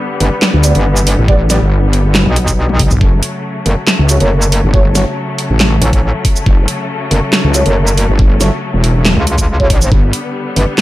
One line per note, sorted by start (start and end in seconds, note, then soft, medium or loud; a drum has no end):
0.00 2.97 D3 medium
0.00 2.97 G3 medium
0.00 2.97 B3 medium
0.20 0.30 G1 loud
0.20 open hi-hat medium
0.42 snare loud
0.42 clap medium
0.53 0.73 D2 loud
0.64 0.72 B3 medium
0.64 0.72 G4 medium
0.64 0.72 D5 medium
0.64 closed hi-hat medium
0.64 shaker medium
0.75 1.16 G1 loud
0.75 closed hi-hat soft
0.97 shaker medium
1.07 open hi-hat loud
1.18 1.60 A1 loud
1.28 1.36 B3 loud
1.28 1.36 G4 medium
1.28 1.36 D5 loud
1.28 kick loud
1.50 1.58 B3 loud
1.50 1.58 G4 medium
1.50 1.58 D5 loud
1.50 snare medium
1.50 closed hi-hat medium
1.50 shaker soft
1.61 2.24 G1 loud
1.93 open hi-hat medium
2.15 snare loud
2.15 clap medium
2.26 2.89 B1 loud
2.36 closed hi-hat medium
2.48 kick medium
2.48 closed hi-hat soft
2.48 shaker medium
2.69 high tom medium
2.79 kick loud
2.79 open hi-hat loud
2.79 mid tom medium
2.91 2.99 B1 medium
2.91 mid tom medium
2.91 shaker soft
3.01 3.21 F#1 medium
3.01 9.88 C#3 medium
3.01 9.88 F#3 medium
3.01 9.88 A3 medium
3.01 kick loud
3.23 closed hi-hat medium
3.66 3.75 F#1 loud
3.66 open hi-hat medium
3.87 snare loud
3.87 clap medium
3.99 4.19 C#2 loud
4.09 4.17 A3 medium
4.09 4.17 F#4 medium
4.09 4.17 C#5 medium
4.09 closed hi-hat medium
4.09 shaker medium
4.20 4.62 F#1 loud
4.20 4.27 A3 medium
4.20 4.27 F#4 medium
4.20 4.27 C#5 medium
4.20 closed hi-hat soft
4.42 shaker medium
4.52 open hi-hat loud
4.64 5.05 G1 loud
4.74 4.82 A3 loud
4.74 4.82 F#4 medium
4.74 4.82 C#5 loud
4.74 kick loud
4.95 5.03 A3 loud
4.95 5.03 F#4 medium
4.95 5.03 C#5 loud
4.95 snare medium
4.95 closed hi-hat medium
4.95 shaker medium
5.38 open hi-hat medium
5.50 5.80 A1 loud
5.60 snare loud
5.60 clap medium
5.82 6.13 A1 loud
5.82 closed hi-hat medium
5.93 kick medium
5.93 closed hi-hat soft
6.25 kick loud
6.25 open hi-hat medium
6.36 shaker medium
6.46 6.66 F#1 loud
6.46 kick loud
6.68 closed hi-hat medium
7.11 7.21 F#1 loud
7.11 open hi-hat medium
7.33 snare loud
7.33 clap medium
7.44 7.64 C#2 loud
7.54 7.62 A3 medium
7.54 7.62 F#4 medium
7.54 7.62 C#5 medium
7.54 closed hi-hat medium
7.54 shaker medium
7.66 8.07 F#1 loud
7.66 7.73 A3 medium
7.66 7.73 F#4 medium
7.66 7.73 C#5 medium
7.66 closed hi-hat soft
7.87 shaker medium
7.97 open hi-hat medium
8.09 8.50 G1 medium
8.19 kick loud
8.41 8.49 A3 loud
8.41 8.49 F#4 medium
8.41 8.49 C#5 loud
8.41 snare medium
8.41 closed hi-hat medium
8.41 shaker medium
8.74 9.15 E1 loud
8.84 open hi-hat medium
9.05 snare loud
9.05 clap medium
9.17 9.90 C#2 loud
9.27 closed hi-hat medium
9.38 kick medium
9.38 closed hi-hat soft
9.38 shaker medium
9.60 9.67 A3 medium
9.60 9.67 F#4 medium
9.60 9.67 C#5 loud
9.60 kick medium
9.70 kick loud
9.70 open hi-hat medium
9.82 shaker medium
9.92 10.12 G1 loud
9.92 10.81 D3 medium
9.92 10.81 G3 medium
9.92 10.81 B3 medium
9.92 kick loud
10.13 closed hi-hat medium
10.56 10.66 G1 loud
10.56 open hi-hat medium
10.78 snare loud
10.78 clap medium